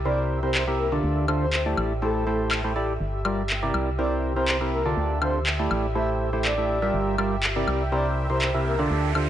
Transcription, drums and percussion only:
0.55 clap loud
1.28 high woodblock medium
1.53 clap loud
1.77 high woodblock medium
2.51 clap loud
2.51 high woodblock medium
3.25 high woodblock medium
3.50 clap loud
3.74 high woodblock medium
4.48 clap loud
5.22 high woodblock medium
5.47 clap loud
5.71 high woodblock medium
6.45 clap loud
7.18 high woodblock medium
7.43 clap loud
7.68 high woodblock medium
8.42 clap loud
9.15 high woodblock medium

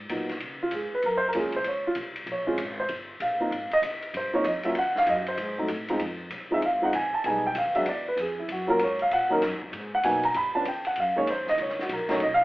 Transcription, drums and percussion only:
0.09 hi-hat pedal medium
0.09 ride medium
0.29 snare soft
0.29 ride soft
0.40 ride medium
0.71 hi-hat pedal medium
0.71 ride medium
1.02 ride medium
1.33 hi-hat pedal medium
1.33 ride medium
1.52 ride soft
1.64 ride medium
1.95 hi-hat pedal soft
1.95 ride medium
2.16 ride soft
2.27 ride medium
2.58 hi-hat pedal soft
2.58 ride medium
2.89 ride medium
3.20 hi-hat pedal soft
3.20 ride medium
3.52 ride medium
3.71 ride soft
3.83 hi-hat pedal medium
3.83 ride medium
4.02 ride soft
4.14 ride medium
4.44 hi-hat pedal medium
4.44 ride medium
4.63 ride medium
4.75 ride medium
4.96 snare soft
5.07 hi-hat pedal medium
5.07 ride medium
5.26 ride soft
5.37 ride medium
5.68 hi-hat pedal soft
5.68 ride medium
5.88 ride soft
5.99 ride medium
6.30 hi-hat pedal medium
6.30 ride medium
6.62 ride medium
6.93 hi-hat pedal soft
6.93 ride medium
7.24 ride medium
7.55 hi-hat pedal medium
7.55 ride medium
7.75 ride soft
7.86 ride medium
8.17 hi-hat pedal medium
8.17 ride medium
8.49 ride medium
8.79 hi-hat pedal soft
8.79 ride medium
8.99 ride soft
9.11 ride medium
9.42 snare soft
9.42 hi-hat pedal medium
9.42 ride medium
9.62 kick medium
9.73 ride medium
10.03 hi-hat pedal medium
10.03 ride medium
10.23 ride soft
10.34 ride medium
10.65 hi-hat pedal soft
10.65 ride medium
10.85 ride soft
10.96 ride medium
11.27 hi-hat pedal medium
11.27 ride medium
11.47 snare soft
11.58 ride medium
11.69 snare soft
11.79 snare soft
11.89 hi-hat pedal soft
11.89 ride medium
12.09 snare medium
12.09 ride soft
12.20 ride medium

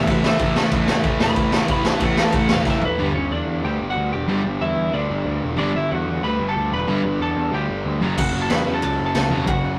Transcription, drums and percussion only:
0.07 kick loud
0.07 crash medium
0.24 snare loud
0.39 kick loud
0.39 crash medium
0.56 snare loud
0.71 kick loud
0.71 crash medium
0.88 snare loud
1.04 kick loud
1.04 crash medium
1.20 snare loud
1.36 kick loud
1.36 crash medium
1.52 snare loud
1.68 kick loud
1.68 crash medium
1.85 snare loud
2.00 kick loud
2.00 crash medium
2.17 snare loud
2.32 kick loud
2.32 crash medium
2.49 snare loud
2.65 kick loud
2.65 snare medium
2.81 floor tom loud
8.18 kick loud
8.18 crash loud
8.50 snare loud
8.50 ride medium
8.82 ride medium
9.15 snare loud
9.15 ride medium
9.47 kick loud
9.47 ride medium

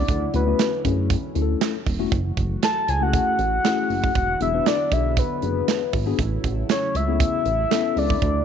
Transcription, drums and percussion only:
0.08 kick loud
0.08 closed hi-hat medium
0.34 closed hi-hat medium
0.59 snare loud
0.59 clap medium
0.59 closed hi-hat loud
0.85 kick medium
0.85 closed hi-hat medium
1.10 kick loud
1.10 closed hi-hat loud
1.35 closed hi-hat medium
1.61 snare loud
1.61 clap medium
1.61 closed hi-hat medium
1.87 kick medium
1.87 open hi-hat medium
2.12 kick loud
2.12 closed hi-hat medium
2.37 kick medium
2.37 closed hi-hat medium
2.63 snare loud
2.63 clap medium
2.63 closed hi-hat loud
2.88 closed hi-hat medium
3.13 kick loud
3.13 closed hi-hat loud
3.39 closed hi-hat medium
3.65 snare loud
3.65 clap medium
3.65 closed hi-hat medium
3.90 open hi-hat medium
4.04 kick medium
4.15 kick loud
4.15 closed hi-hat medium
4.41 closed hi-hat medium
4.66 snare loud
4.66 clap medium
4.66 closed hi-hat medium
4.92 kick loud
4.92 closed hi-hat medium
5.17 kick loud
5.17 closed hi-hat loud
5.42 closed hi-hat medium
5.68 snare loud
5.68 clap medium
5.68 closed hi-hat medium
5.93 kick medium
5.93 open hi-hat medium
6.19 kick loud
6.19 closed hi-hat medium
6.44 kick medium
6.44 closed hi-hat medium
6.69 snare loud
6.69 clap medium
6.69 closed hi-hat loud
6.95 closed hi-hat medium
7.20 kick loud
7.20 closed hi-hat loud
7.45 closed hi-hat medium
7.71 snare loud
7.71 clap medium
7.71 closed hi-hat medium
7.97 open hi-hat medium
8.10 kick medium
8.22 kick loud
8.22 closed hi-hat medium

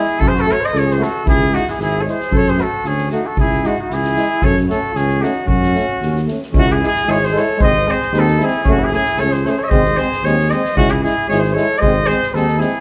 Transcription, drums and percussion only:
0.21 kick medium
0.36 snare soft
0.48 snare soft
0.75 snare soft
0.90 snare soft
1.02 snare soft
1.27 kick loud
1.55 snare soft
1.67 snare soft
1.80 snare soft
2.07 snare soft
2.20 snare soft
2.32 kick medium
2.46 snare soft
2.57 snare soft
2.84 snare soft
2.98 snare soft
3.09 snare soft
3.37 kick medium
3.51 snare soft
3.63 snare soft
3.90 snare soft
4.04 snare soft
4.16 snare soft
4.42 kick medium
4.56 snare soft
4.69 snare soft
4.95 snare soft
5.09 snare soft
5.23 snare soft
5.48 kick medium
5.63 snare soft
5.76 snare soft
6.02 snare soft
6.15 snare soft
6.28 snare soft
6.42 snare soft
6.54 kick loud
6.83 snare soft
6.96 snare soft
7.08 snare soft
7.22 snare soft
7.35 snare soft
7.61 kick loud
7.88 snare soft
8.01 snare soft
8.14 snare soft
8.27 snare soft
8.39 snare soft
8.66 kick medium
8.92 snare soft
9.05 snare soft
9.18 snare soft
9.32 snare soft
9.45 snare soft
9.71 kick medium
9.84 snare soft
9.97 snare soft
10.12 snare soft
10.24 snare soft
10.39 snare soft
10.51 snare soft
10.64 snare soft
10.77 kick medium
11.04 snare soft
11.30 snare soft
11.44 snare soft
11.56 snare soft
11.82 kick medium
12.09 snare soft
12.22 snare soft
12.35 snare soft
12.48 snare soft
12.60 snare soft

